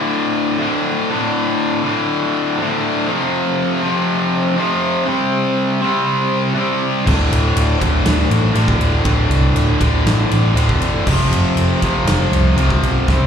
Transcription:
Already playing: D2 A2 D3
0.59 D2 A2 D3
1.10 D2 A2 D3
1.83 D2 A2 D3
2.59 D2 A2 D3
3.07 F2 C3 F3
3.83 F2 C3 F3
4.57 F2 C3 F3
5.06 C3 G3 C4
5.82 C3 G3 C4
6.54 C3 G3
6.58 C4
7.05 D1 D2 A2 D3, kick, crash
7.31 D1, ride
7.55 D1, ride
7.79 D1 D2 A2 D3, kick, ride
8.03 D1, snare, ride
8.19 snare
8.29 A1, ride
8.53 A1 D2 A2 D3, ride
8.68 kick
8.79 D1, ride
9.04 D1 D2 A2 D3, kick, ride
9.29 C2, ride
9.54 D1, ride
9.80 D1 D2 A2 D3, kick, ride
10.04 A1, snare, ride
10.30 A1, ride
10.54 D1 D2 A2 D3, ride
10.69 kick
10.79 E1, ride
11.07 F1 F2 C3 F3, kick, crash
11.30 F1, ride
11.55 F1, ride
11.81 F1 F2 C3 F3, kick, ride
12.05 F1, snare, ride
12.32 C2, ride
12.57 C2 F2 C3 F3, ride
12.70 kick
12.82 B1, ride
13.08 C2 C3 G3 C4, kick, snare

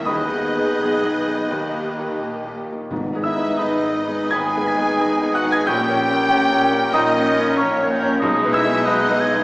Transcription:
0.05 D#2 D#3 B3 D#4 G#4 B4 D#5 B5 D#6
0.32 B3 D#4 G#4
0.57 B3 D#4 G#4
0.78 B1 B2 B3 D#4 G#4
1.04 B3 D#4 G#4
1.27 B3 D#4 G#4
1.49 D#2 D#3 A#3 G4
1.74 A#3 D#4 G4
1.98 A#3 D#4 G4
2.21 A#1 A#2 A#3 D#4 G4
2.46 A#3 D#4 G4
2.71 A#3 D#4 G4
2.90 G#1 G#2 B3 D#4
3.15 B3 D#4 G#4
3.23 D#4 E4 B4 E5 E6
3.36 B3 D#4 G#4
3.57 G#1 G#2 B3 D#4 G#4 D#5 B5 D#6
3.82 B3 D#4 G#4
3.96 D#4 B4
4.08 B3 D#4 G#4
4.31 G#1 D#2 G#2 B3 D#4 G#4 G#5 B5 D#6 G#6
4.55 B3 D#4 G#4
4.68 D#4 B4 G#5
4.77 B3 D#4 G#4
4.98 G#1 G#2 B3 D#4 G#4 D#5
5.21 B3 D#4 G#4
5.34 D#4 F#4 B4 F#5 F#6
5.45 B3 D#4 G#4
5.50 G#4 G#5 G#6
5.67 A#1 A#2 A#3 C#4 G4 A#4 G5 C#6 G6
5.88 A#3 C#4 C#5
6.03 C#4 A#4
6.10 A#3 C#4 C#5
6.30 A#1 A#2 A#3 C#4 C#5
6.51 A#3 C#4 C#5
6.64 C#4 A#4
6.72 A#3 C#4 C#5
6.93 A#1 A#2 D#4 D#5 G5 A#5 D#6
7.17 A#3 C#4 C#5
7.26 C#4 A#4 D#5
7.38 A#3 C#4 C#5
7.57 A#1 A#2 A#3 C#4 C#5 F5 A#5 C#6
7.61 C#4
7.82 A#3 C#4 C#5
7.90 C#4 A#4 G5
8.02 A#3 C#4 C#5
8.20 B1 B2 G#3 D#4 G#4 D#5
8.43 G#3 D#4 B4
8.52 E4 E5 G#5 E6
8.65 G#3 D#4 B4
8.84 G#3 D#4 G#4 B4 D#5 F#5 D#6
8.88 D#5 B5
9.10 G#3 D#4 B4
9.20 G#5
9.34 G#3 D#4 B4

